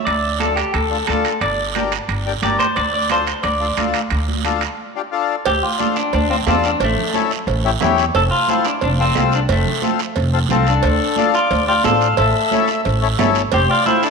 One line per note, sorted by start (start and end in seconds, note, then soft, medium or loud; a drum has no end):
0.05 0.61 D2 medium
0.05 0.38 D5 medium
0.05 high conga soft
0.05 high timbale medium
0.05 long guiro medium
0.40 0.59 D4 medium
0.40 0.59 F4 medium
0.40 0.56 A4 medium
0.40 0.59 A4 medium
0.40 high conga medium
0.40 high timbale medium
0.40 short guiro medium
0.56 0.73 G4 medium
0.56 high timbale medium
0.56 short guiro medium
0.74 1.01 D2 medium
0.74 1.06 A4 medium
0.74 high timbale medium
0.74 long guiro medium
0.91 0.97 D4 medium
0.91 0.97 F4 medium
0.91 0.97 A4 medium
0.91 high conga soft
1.07 1.22 D2 medium
1.07 1.32 D4 medium
1.07 1.32 F4 medium
1.07 1.39 A4 medium
1.07 1.33 A4 medium
1.07 high conga medium
1.07 high timbale medium
1.07 short guiro medium
1.25 high timbale medium
1.25 short guiro medium
1.41 1.95 G1 medium
1.41 2.39 D5 medium
1.41 high conga soft
1.41 high timbale medium
1.41 long guiro medium
1.75 1.93 D4 medium
1.75 1.93 G4 medium
1.75 1.93 A#4 medium
1.75 high conga medium
1.75 high timbale medium
1.75 short guiro medium
1.92 high timbale medium
1.92 short guiro medium
2.08 2.36 G1 medium
2.08 high timbale medium
2.08 long guiro medium
2.25 2.32 D4 medium
2.25 2.32 G4 medium
2.25 2.33 A#4 medium
2.25 high conga soft
2.42 2.56 G1 medium
2.42 2.67 D4 medium
2.42 2.67 G4 medium
2.42 2.67 A#4 medium
2.42 2.59 D5 medium
2.42 high conga medium
2.42 high timbale medium
2.42 short guiro medium
2.59 2.75 C5 medium
2.59 high conga medium
2.59 high timbale medium
2.59 short guiro medium
2.76 3.31 D2 medium
2.76 2.93 D5 medium
2.76 high conga soft
2.76 high timbale medium
2.76 long guiro medium
2.94 3.09 D5 medium
3.10 3.28 D4 medium
3.10 3.28 F4 medium
3.10 3.29 A4 medium
3.10 3.42 C5 medium
3.10 high conga medium
3.10 high timbale medium
3.10 short guiro medium
3.27 high timbale medium
3.27 short guiro medium
3.43 3.71 D2 medium
3.43 5.08 D5 medium
3.43 high timbale medium
3.43 long guiro medium
3.60 3.66 D4 medium
3.60 3.67 F4 medium
3.60 3.67 A4 medium
3.60 high conga soft
3.77 3.91 D2 medium
3.77 4.01 D4 medium
3.77 4.01 F4 medium
3.77 4.01 A4 medium
3.77 high conga medium
3.77 high timbale medium
3.77 short guiro medium
3.94 high timbale medium
3.94 short guiro medium
4.10 4.65 D2 medium
4.10 high timbale medium
4.10 long guiro medium
4.28 high conga medium
4.45 4.63 D4 medium
4.45 4.63 F4 medium
4.45 4.63 A4 medium
4.45 high conga medium
4.45 high timbale medium
4.45 short guiro medium
4.61 high timbale medium
4.61 short guiro medium
4.96 5.02 D4 medium
4.96 5.02 F4 medium
4.96 5.02 G4 medium
5.12 5.36 D4 medium
5.12 5.36 F4 medium
5.12 5.36 A4 medium
5.46 5.60 D2 loud
5.46 5.63 G4 loud
5.46 cowbell loud
5.46 high conga soft
5.46 long guiro medium
5.63 5.97 F4 loud
5.79 5.97 D4 medium
5.79 5.97 F4 medium
5.79 5.97 A4 medium
5.79 high conga medium
5.79 short guiro medium
5.96 6.13 D4 medium
5.96 short guiro medium
6.13 6.40 D2 loud
6.13 6.30 D4 medium
6.13 cowbell medium
6.13 high conga soft
6.13 long guiro medium
6.30 6.35 C4 medium
6.30 6.36 D4 medium
6.30 6.36 F4 medium
6.30 6.36 C5 medium
6.47 6.74 E2 medium
6.47 6.65 C4 medium
6.47 6.71 D4 medium
6.47 6.71 F4 medium
6.47 6.71 A4 medium
6.47 high conga medium
6.47 low timbale medium
6.47 short guiro medium
6.63 6.82 D4 medium
6.63 short guiro medium
6.80 6.94 A1 loud
6.80 cowbell loud
6.80 long guiro medium
6.84 7.14 A3 medium
6.97 low conga medium
7.14 7.32 C#4 medium
7.14 7.32 E4 medium
7.14 7.32 A4 medium
7.14 high conga medium
7.14 short guiro medium
7.31 short guiro medium
7.47 7.74 A1 loud
7.47 cowbell medium
7.47 high conga soft
7.47 long guiro medium
7.64 7.70 C#4 medium
7.64 7.71 E4 medium
7.64 7.71 G4 medium
7.81 8.08 E2 loud
7.81 8.05 C#4 medium
7.81 8.05 E4 medium
7.81 8.05 G4 loud
7.81 high conga medium
7.81 low conga medium
7.81 low timbale medium
7.81 short guiro medium
7.98 short guiro medium
8.14 8.28 F1 loud
8.14 8.21 A4 loud
8.14 cowbell loud
8.14 high conga soft
8.14 long guiro medium
8.31 8.49 F4 loud
8.48 8.66 C4 medium
8.48 8.66 E4 loud
8.48 8.67 F4 medium
8.48 8.67 A4 medium
8.48 high conga medium
8.48 short guiro medium
8.65 8.70 D4 medium
8.65 short guiro medium
8.81 9.09 F1 loud
8.81 8.89 D4 medium
8.81 cowbell medium
8.81 high conga soft
8.81 long guiro medium
8.99 9.05 C4 medium
8.99 9.33 C4 loud
8.99 9.05 F4 medium
8.99 9.05 A4 medium
9.15 9.42 C2 medium
9.15 9.40 C4 medium
9.15 9.40 F4 medium
9.15 9.40 A4 medium
9.15 high conga medium
9.15 low timbale medium
9.15 short guiro medium
9.32 9.40 D4 medium
9.32 short guiro medium
9.49 9.63 F1 loud
9.49 9.82 A3 medium
9.49 cowbell loud
9.49 high conga soft
9.49 long guiro medium
9.65 low conga medium
9.82 10.00 C4 medium
9.82 10.01 F4 medium
9.82 10.01 A4 medium
9.82 high conga medium
9.82 short guiro medium
9.99 short guiro medium
10.16 10.43 F1 loud
10.16 cowbell medium
10.16 high conga soft
10.16 long guiro medium
10.33 10.39 C4 medium
10.33 10.39 F4 medium
10.33 10.39 A4 medium
10.49 10.77 C2 medium
10.49 10.73 C4 medium
10.49 10.66 C4 medium
10.49 10.73 F4 medium
10.49 10.74 A4 medium
10.49 10.66 A4 medium
10.49 high conga medium
10.49 low conga medium
10.49 short guiro medium
10.67 11.31 D4 medium
10.67 11.30 A4 medium
10.67 short guiro medium
10.83 10.97 D2 loud
10.83 cowbell loud
10.83 high conga soft
10.83 long guiro medium
11.16 11.35 D4 medium
11.16 11.35 F4 medium
11.16 11.35 A4 loud
11.16 high conga medium
11.16 short guiro medium
11.33 11.67 F4 medium
11.33 11.65 D5 medium
11.33 short guiro medium
11.51 11.78 D2 loud
11.51 cowbell medium
11.51 high conga soft
11.51 long guiro medium
11.66 11.73 D4 medium
11.66 11.73 F4 medium
11.66 11.85 F4 loud
11.66 11.74 G4 medium
11.66 11.82 D5 medium
11.84 12.11 A1 medium
11.84 12.08 D4 medium
11.84 12.08 F4 medium
11.84 12.16 A4 loud
11.84 12.08 C5 medium
11.84 12.15 F5 medium
11.84 high conga medium
11.84 low timbale medium
11.84 short guiro medium
12.01 short guiro medium
12.17 12.31 A1 loud
12.17 12.81 A4 medium
12.17 12.81 E5 medium
12.17 cowbell loud
12.17 long guiro medium
12.51 12.69 C#4 medium
12.51 12.70 E4 medium
12.51 12.70 A4 medium
12.51 high conga medium
12.51 short guiro medium
12.68 short guiro medium
12.85 13.12 A1 loud
12.85 cowbell medium
12.85 high conga soft
12.85 long guiro medium
13.02 13.08 C#4 medium
13.02 13.08 E4 medium
13.02 13.08 A4 medium
13.19 13.45 G1 medium
13.19 13.42 C#4 medium
13.19 13.42 E4 medium
13.19 13.43 A4 loud
13.19 high conga medium
13.19 low conga medium
13.19 low timbale medium
13.19 short guiro medium
13.35 short guiro medium
13.52 13.66 F1 loud
13.52 13.70 G4 loud
13.52 13.68 C5 loud
13.52 cowbell loud
13.52 high conga soft
13.52 long guiro medium
13.70 13.85 F4 medium
13.70 13.85 D5 medium
13.86 14.03 C4 medium
13.86 14.03 E4 loud
13.86 14.03 F4 medium
13.86 14.04 A4 medium
13.86 14.02 C5 medium
13.86 high conga medium
13.86 short guiro medium
14.03 14.10 D4 loud
14.03 14.10 A4 medium
14.03 short guiro medium